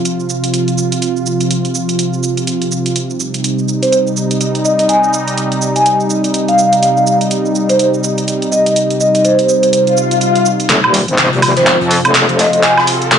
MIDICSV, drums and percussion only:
0, 0, Header, 1, 2, 480
1, 0, Start_track
1, 0, Tempo, 483871
1, 1013, Time_signature, 4, 2, 24, 8
1, 13082, End_track
2, 0, Start_track
2, 0, Title_t, "Drums"
2, 52, Note_on_c, 9, 42, 60
2, 53, Note_on_c, 9, 82, 40
2, 151, Note_off_c, 9, 42, 0
2, 153, Note_off_c, 9, 82, 0
2, 196, Note_on_c, 9, 82, 19
2, 294, Note_off_c, 9, 82, 0
2, 294, Note_on_c, 9, 82, 64
2, 394, Note_off_c, 9, 82, 0
2, 433, Note_on_c, 9, 42, 45
2, 435, Note_on_c, 9, 82, 28
2, 532, Note_off_c, 9, 42, 0
2, 532, Note_on_c, 9, 42, 62
2, 534, Note_off_c, 9, 82, 0
2, 534, Note_on_c, 9, 82, 38
2, 631, Note_off_c, 9, 42, 0
2, 633, Note_off_c, 9, 82, 0
2, 673, Note_on_c, 9, 42, 31
2, 675, Note_on_c, 9, 82, 19
2, 772, Note_off_c, 9, 42, 0
2, 773, Note_off_c, 9, 82, 0
2, 773, Note_on_c, 9, 82, 67
2, 872, Note_off_c, 9, 82, 0
2, 914, Note_on_c, 9, 42, 46
2, 916, Note_on_c, 9, 82, 31
2, 1013, Note_off_c, 9, 42, 0
2, 1013, Note_on_c, 9, 42, 55
2, 1015, Note_off_c, 9, 82, 0
2, 1015, Note_on_c, 9, 82, 38
2, 1112, Note_off_c, 9, 42, 0
2, 1114, Note_off_c, 9, 82, 0
2, 1156, Note_on_c, 9, 82, 21
2, 1254, Note_off_c, 9, 82, 0
2, 1254, Note_on_c, 9, 82, 72
2, 1353, Note_off_c, 9, 82, 0
2, 1394, Note_on_c, 9, 42, 45
2, 1396, Note_on_c, 9, 82, 29
2, 1494, Note_off_c, 9, 42, 0
2, 1494, Note_on_c, 9, 42, 58
2, 1495, Note_off_c, 9, 82, 0
2, 1496, Note_on_c, 9, 82, 42
2, 1593, Note_off_c, 9, 42, 0
2, 1595, Note_off_c, 9, 82, 0
2, 1636, Note_on_c, 9, 42, 31
2, 1637, Note_on_c, 9, 82, 20
2, 1734, Note_off_c, 9, 82, 0
2, 1734, Note_on_c, 9, 82, 69
2, 1735, Note_off_c, 9, 42, 0
2, 1833, Note_off_c, 9, 82, 0
2, 1875, Note_on_c, 9, 42, 46
2, 1876, Note_on_c, 9, 82, 29
2, 1973, Note_off_c, 9, 42, 0
2, 1973, Note_on_c, 9, 42, 59
2, 1975, Note_off_c, 9, 82, 0
2, 1975, Note_on_c, 9, 82, 41
2, 2072, Note_off_c, 9, 42, 0
2, 2074, Note_off_c, 9, 82, 0
2, 2116, Note_on_c, 9, 82, 20
2, 2215, Note_off_c, 9, 82, 0
2, 2215, Note_on_c, 9, 82, 67
2, 2314, Note_off_c, 9, 82, 0
2, 2355, Note_on_c, 9, 42, 43
2, 2356, Note_on_c, 9, 82, 29
2, 2453, Note_off_c, 9, 42, 0
2, 2453, Note_on_c, 9, 42, 59
2, 2455, Note_off_c, 9, 82, 0
2, 2455, Note_on_c, 9, 82, 39
2, 2553, Note_off_c, 9, 42, 0
2, 2554, Note_off_c, 9, 82, 0
2, 2595, Note_on_c, 9, 42, 31
2, 2597, Note_on_c, 9, 82, 19
2, 2694, Note_off_c, 9, 42, 0
2, 2695, Note_off_c, 9, 82, 0
2, 2695, Note_on_c, 9, 82, 69
2, 2795, Note_off_c, 9, 82, 0
2, 2836, Note_on_c, 9, 42, 47
2, 2837, Note_on_c, 9, 82, 29
2, 2934, Note_off_c, 9, 42, 0
2, 2934, Note_on_c, 9, 42, 58
2, 2935, Note_off_c, 9, 82, 0
2, 2935, Note_on_c, 9, 82, 40
2, 3033, Note_off_c, 9, 42, 0
2, 3035, Note_off_c, 9, 82, 0
2, 3077, Note_on_c, 9, 82, 22
2, 3175, Note_off_c, 9, 82, 0
2, 3175, Note_on_c, 9, 82, 76
2, 3274, Note_off_c, 9, 82, 0
2, 3316, Note_on_c, 9, 42, 45
2, 3317, Note_on_c, 9, 82, 31
2, 3415, Note_off_c, 9, 42, 0
2, 3415, Note_on_c, 9, 42, 59
2, 3416, Note_off_c, 9, 82, 0
2, 3416, Note_on_c, 9, 82, 41
2, 3514, Note_off_c, 9, 42, 0
2, 3515, Note_off_c, 9, 82, 0
2, 3557, Note_on_c, 9, 82, 20
2, 3655, Note_off_c, 9, 82, 0
2, 3655, Note_on_c, 9, 82, 71
2, 3754, Note_off_c, 9, 82, 0
2, 3796, Note_on_c, 9, 42, 47
2, 3797, Note_on_c, 9, 82, 32
2, 3893, Note_off_c, 9, 42, 0
2, 3893, Note_on_c, 9, 42, 62
2, 3895, Note_off_c, 9, 82, 0
2, 3895, Note_on_c, 9, 82, 44
2, 3993, Note_off_c, 9, 42, 0
2, 3994, Note_off_c, 9, 82, 0
2, 4037, Note_on_c, 9, 82, 20
2, 4135, Note_off_c, 9, 82, 0
2, 4135, Note_on_c, 9, 82, 72
2, 4234, Note_off_c, 9, 82, 0
2, 4274, Note_on_c, 9, 42, 47
2, 4276, Note_on_c, 9, 82, 31
2, 4372, Note_off_c, 9, 42, 0
2, 4372, Note_on_c, 9, 42, 62
2, 4373, Note_off_c, 9, 82, 0
2, 4373, Note_on_c, 9, 82, 43
2, 4471, Note_off_c, 9, 42, 0
2, 4473, Note_off_c, 9, 82, 0
2, 4514, Note_on_c, 9, 42, 32
2, 4516, Note_on_c, 9, 82, 20
2, 4613, Note_off_c, 9, 42, 0
2, 4613, Note_off_c, 9, 82, 0
2, 4613, Note_on_c, 9, 82, 71
2, 4712, Note_off_c, 9, 82, 0
2, 4753, Note_on_c, 9, 42, 46
2, 4754, Note_on_c, 9, 82, 30
2, 4851, Note_off_c, 9, 42, 0
2, 4851, Note_on_c, 9, 42, 59
2, 4853, Note_off_c, 9, 82, 0
2, 4853, Note_on_c, 9, 82, 41
2, 4951, Note_off_c, 9, 42, 0
2, 4952, Note_off_c, 9, 82, 0
2, 4996, Note_on_c, 9, 82, 23
2, 5094, Note_off_c, 9, 82, 0
2, 5094, Note_on_c, 9, 82, 76
2, 5193, Note_off_c, 9, 82, 0
2, 5233, Note_on_c, 9, 42, 49
2, 5235, Note_on_c, 9, 82, 31
2, 5332, Note_off_c, 9, 42, 0
2, 5332, Note_on_c, 9, 42, 60
2, 5334, Note_off_c, 9, 82, 0
2, 5334, Note_on_c, 9, 82, 44
2, 5432, Note_off_c, 9, 42, 0
2, 5433, Note_off_c, 9, 82, 0
2, 5474, Note_on_c, 9, 42, 31
2, 5475, Note_on_c, 9, 82, 20
2, 5573, Note_off_c, 9, 42, 0
2, 5573, Note_off_c, 9, 82, 0
2, 5573, Note_on_c, 9, 82, 75
2, 5672, Note_off_c, 9, 82, 0
2, 5713, Note_on_c, 9, 42, 48
2, 5714, Note_on_c, 9, 82, 33
2, 5812, Note_off_c, 9, 42, 0
2, 5812, Note_on_c, 9, 42, 62
2, 5813, Note_off_c, 9, 82, 0
2, 5813, Note_on_c, 9, 82, 43
2, 5911, Note_off_c, 9, 42, 0
2, 5913, Note_off_c, 9, 82, 0
2, 5956, Note_on_c, 9, 82, 21
2, 6053, Note_off_c, 9, 82, 0
2, 6053, Note_on_c, 9, 82, 74
2, 6152, Note_off_c, 9, 82, 0
2, 6192, Note_on_c, 9, 42, 50
2, 6194, Note_on_c, 9, 82, 31
2, 6290, Note_off_c, 9, 42, 0
2, 6290, Note_on_c, 9, 42, 61
2, 6292, Note_off_c, 9, 82, 0
2, 6292, Note_on_c, 9, 82, 46
2, 6390, Note_off_c, 9, 42, 0
2, 6391, Note_off_c, 9, 82, 0
2, 6433, Note_on_c, 9, 42, 32
2, 6434, Note_on_c, 9, 82, 20
2, 6532, Note_off_c, 9, 42, 0
2, 6533, Note_off_c, 9, 82, 0
2, 6533, Note_on_c, 9, 82, 76
2, 6632, Note_off_c, 9, 82, 0
2, 6673, Note_on_c, 9, 42, 46
2, 6675, Note_on_c, 9, 82, 31
2, 6772, Note_off_c, 9, 42, 0
2, 6772, Note_on_c, 9, 42, 61
2, 6773, Note_off_c, 9, 82, 0
2, 6773, Note_on_c, 9, 82, 43
2, 6871, Note_off_c, 9, 42, 0
2, 6872, Note_off_c, 9, 82, 0
2, 6914, Note_on_c, 9, 82, 22
2, 7013, Note_off_c, 9, 82, 0
2, 7013, Note_on_c, 9, 82, 81
2, 7112, Note_off_c, 9, 82, 0
2, 7153, Note_on_c, 9, 42, 50
2, 7154, Note_on_c, 9, 82, 32
2, 7251, Note_off_c, 9, 42, 0
2, 7251, Note_on_c, 9, 42, 63
2, 7252, Note_off_c, 9, 82, 0
2, 7252, Note_on_c, 9, 82, 46
2, 7350, Note_off_c, 9, 42, 0
2, 7352, Note_off_c, 9, 82, 0
2, 7395, Note_on_c, 9, 82, 21
2, 7493, Note_off_c, 9, 82, 0
2, 7493, Note_on_c, 9, 82, 72
2, 7592, Note_off_c, 9, 82, 0
2, 7633, Note_on_c, 9, 42, 50
2, 7634, Note_on_c, 9, 82, 33
2, 7731, Note_off_c, 9, 42, 0
2, 7731, Note_on_c, 9, 42, 66
2, 7733, Note_off_c, 9, 82, 0
2, 7733, Note_on_c, 9, 82, 46
2, 7831, Note_off_c, 9, 42, 0
2, 7832, Note_off_c, 9, 82, 0
2, 7875, Note_on_c, 9, 82, 20
2, 7973, Note_off_c, 9, 82, 0
2, 7973, Note_on_c, 9, 82, 76
2, 8072, Note_off_c, 9, 82, 0
2, 8114, Note_on_c, 9, 42, 52
2, 8115, Note_on_c, 9, 82, 32
2, 8212, Note_off_c, 9, 42, 0
2, 8212, Note_on_c, 9, 42, 65
2, 8214, Note_off_c, 9, 82, 0
2, 8214, Note_on_c, 9, 82, 47
2, 8311, Note_off_c, 9, 42, 0
2, 8313, Note_off_c, 9, 82, 0
2, 8355, Note_on_c, 9, 42, 34
2, 8356, Note_on_c, 9, 82, 21
2, 8454, Note_off_c, 9, 42, 0
2, 8455, Note_off_c, 9, 82, 0
2, 8455, Note_on_c, 9, 82, 75
2, 8554, Note_off_c, 9, 82, 0
2, 8594, Note_on_c, 9, 42, 51
2, 8596, Note_on_c, 9, 82, 34
2, 8692, Note_off_c, 9, 42, 0
2, 8692, Note_on_c, 9, 42, 61
2, 8693, Note_off_c, 9, 82, 0
2, 8693, Note_on_c, 9, 82, 43
2, 8791, Note_off_c, 9, 42, 0
2, 8792, Note_off_c, 9, 82, 0
2, 8834, Note_on_c, 9, 42, 37
2, 8835, Note_on_c, 9, 82, 22
2, 8933, Note_off_c, 9, 42, 0
2, 8934, Note_off_c, 9, 82, 0
2, 8934, Note_on_c, 9, 82, 76
2, 9033, Note_off_c, 9, 82, 0
2, 9075, Note_on_c, 9, 42, 47
2, 9076, Note_on_c, 9, 82, 33
2, 9172, Note_off_c, 9, 42, 0
2, 9172, Note_on_c, 9, 42, 64
2, 9174, Note_off_c, 9, 82, 0
2, 9174, Note_on_c, 9, 82, 43
2, 9272, Note_off_c, 9, 42, 0
2, 9273, Note_off_c, 9, 82, 0
2, 9313, Note_on_c, 9, 42, 36
2, 9315, Note_on_c, 9, 82, 21
2, 9412, Note_off_c, 9, 42, 0
2, 9413, Note_off_c, 9, 82, 0
2, 9413, Note_on_c, 9, 82, 73
2, 9512, Note_off_c, 9, 82, 0
2, 9553, Note_on_c, 9, 42, 52
2, 9555, Note_on_c, 9, 82, 32
2, 9652, Note_off_c, 9, 42, 0
2, 9652, Note_on_c, 9, 42, 68
2, 9654, Note_off_c, 9, 82, 0
2, 9654, Note_on_c, 9, 82, 44
2, 9751, Note_off_c, 9, 42, 0
2, 9753, Note_off_c, 9, 82, 0
2, 9794, Note_on_c, 9, 42, 35
2, 9795, Note_on_c, 9, 82, 21
2, 9893, Note_off_c, 9, 42, 0
2, 9893, Note_off_c, 9, 82, 0
2, 9893, Note_on_c, 9, 82, 76
2, 9992, Note_off_c, 9, 82, 0
2, 10032, Note_on_c, 9, 42, 51
2, 10034, Note_on_c, 9, 82, 33
2, 10130, Note_off_c, 9, 42, 0
2, 10130, Note_on_c, 9, 42, 66
2, 10131, Note_off_c, 9, 82, 0
2, 10131, Note_on_c, 9, 82, 43
2, 10229, Note_off_c, 9, 42, 0
2, 10231, Note_off_c, 9, 82, 0
2, 10272, Note_on_c, 9, 42, 36
2, 10274, Note_on_c, 9, 82, 21
2, 10372, Note_off_c, 9, 42, 0
2, 10372, Note_off_c, 9, 82, 0
2, 10372, Note_on_c, 9, 82, 77
2, 10472, Note_off_c, 9, 82, 0
2, 10513, Note_on_c, 9, 42, 51
2, 10514, Note_on_c, 9, 82, 33
2, 10610, Note_off_c, 9, 42, 0
2, 10610, Note_on_c, 9, 42, 83
2, 10611, Note_off_c, 9, 42, 0
2, 10611, Note_on_c, 9, 39, 45
2, 10611, Note_on_c, 9, 42, 61
2, 10614, Note_off_c, 9, 82, 0
2, 10710, Note_off_c, 9, 39, 0
2, 10710, Note_off_c, 9, 42, 0
2, 10753, Note_on_c, 9, 76, 59
2, 10851, Note_on_c, 9, 46, 103
2, 10852, Note_off_c, 9, 76, 0
2, 10853, Note_on_c, 9, 42, 61
2, 10950, Note_off_c, 9, 46, 0
2, 10952, Note_off_c, 9, 42, 0
2, 10994, Note_on_c, 9, 42, 49
2, 11090, Note_off_c, 9, 42, 0
2, 11090, Note_on_c, 9, 42, 89
2, 11091, Note_on_c, 9, 38, 118
2, 11092, Note_off_c, 9, 42, 0
2, 11092, Note_on_c, 9, 39, 49
2, 11092, Note_on_c, 9, 42, 66
2, 11190, Note_off_c, 9, 38, 0
2, 11191, Note_off_c, 9, 39, 0
2, 11191, Note_off_c, 9, 42, 0
2, 11239, Note_on_c, 9, 42, 47
2, 11332, Note_on_c, 9, 46, 97
2, 11332, Note_on_c, 9, 76, 58
2, 11334, Note_off_c, 9, 42, 0
2, 11334, Note_on_c, 9, 42, 69
2, 11431, Note_off_c, 9, 46, 0
2, 11431, Note_off_c, 9, 76, 0
2, 11433, Note_off_c, 9, 42, 0
2, 11466, Note_on_c, 9, 38, 51
2, 11474, Note_on_c, 9, 42, 55
2, 11566, Note_off_c, 9, 38, 0
2, 11569, Note_off_c, 9, 42, 0
2, 11569, Note_on_c, 9, 42, 84
2, 11573, Note_off_c, 9, 42, 0
2, 11573, Note_on_c, 9, 39, 48
2, 11573, Note_on_c, 9, 42, 66
2, 11672, Note_off_c, 9, 39, 0
2, 11672, Note_off_c, 9, 42, 0
2, 11716, Note_on_c, 9, 42, 44
2, 11811, Note_off_c, 9, 42, 0
2, 11811, Note_on_c, 9, 42, 59
2, 11812, Note_on_c, 9, 46, 91
2, 11910, Note_off_c, 9, 42, 0
2, 11911, Note_off_c, 9, 46, 0
2, 11953, Note_on_c, 9, 42, 53
2, 11953, Note_on_c, 9, 76, 73
2, 12044, Note_off_c, 9, 42, 0
2, 12044, Note_on_c, 9, 42, 96
2, 12048, Note_on_c, 9, 38, 118
2, 12051, Note_off_c, 9, 42, 0
2, 12051, Note_on_c, 9, 39, 51
2, 12051, Note_on_c, 9, 42, 70
2, 12053, Note_off_c, 9, 76, 0
2, 12148, Note_off_c, 9, 38, 0
2, 12150, Note_off_c, 9, 39, 0
2, 12150, Note_off_c, 9, 42, 0
2, 12193, Note_on_c, 9, 42, 36
2, 12291, Note_on_c, 9, 46, 102
2, 12292, Note_off_c, 9, 42, 0
2, 12293, Note_on_c, 9, 38, 61
2, 12298, Note_on_c, 9, 42, 71
2, 12390, Note_off_c, 9, 46, 0
2, 12393, Note_off_c, 9, 38, 0
2, 12397, Note_off_c, 9, 42, 0
2, 12432, Note_on_c, 9, 42, 52
2, 12531, Note_off_c, 9, 42, 0
2, 12531, Note_on_c, 9, 39, 48
2, 12531, Note_on_c, 9, 42, 63
2, 12539, Note_off_c, 9, 42, 0
2, 12539, Note_on_c, 9, 42, 83
2, 12630, Note_off_c, 9, 39, 0
2, 12639, Note_off_c, 9, 42, 0
2, 12673, Note_on_c, 9, 76, 62
2, 12677, Note_on_c, 9, 38, 49
2, 12767, Note_on_c, 9, 42, 63
2, 12770, Note_on_c, 9, 46, 113
2, 12772, Note_off_c, 9, 76, 0
2, 12776, Note_off_c, 9, 38, 0
2, 12867, Note_off_c, 9, 42, 0
2, 12869, Note_off_c, 9, 46, 0
2, 12912, Note_on_c, 9, 42, 50
2, 13009, Note_on_c, 9, 38, 99
2, 13010, Note_off_c, 9, 42, 0
2, 13010, Note_on_c, 9, 39, 53
2, 13010, Note_on_c, 9, 42, 90
2, 13082, Note_off_c, 9, 38, 0
2, 13082, Note_off_c, 9, 39, 0
2, 13082, Note_off_c, 9, 42, 0
2, 13082, End_track
0, 0, End_of_file